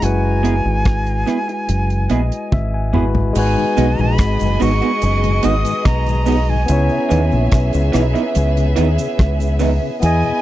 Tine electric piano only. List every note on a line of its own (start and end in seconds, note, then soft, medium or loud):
0.00 2.89 G#3 medium
0.00 2.90 E4 medium
0.00 2.91 F#4 medium
0.05 2.92 B4 medium
2.11 2.49 D#5 medium
2.53 2.72 E5 medium
2.74 2.93 G#5 medium
2.93 3.32 G#3 medium
2.93 3.36 E4 medium
2.93 3.36 F#4 soft
2.93 3.37 B4 medium
2.93 3.33 B5 medium
3.33 6.64 G#3 medium
3.33 6.65 D#4 medium
3.33 6.66 F#4 medium
3.39 6.67 B4 medium
6.66 9.97 B3 medium
6.66 9.98 C#4 medium
6.66 9.99 E4 medium
6.72 10.00 C#5 medium
10.00 10.42 B3 medium
10.00 10.42 E4 medium
10.00 10.42 G#4 medium
10.06 10.42 D#5 medium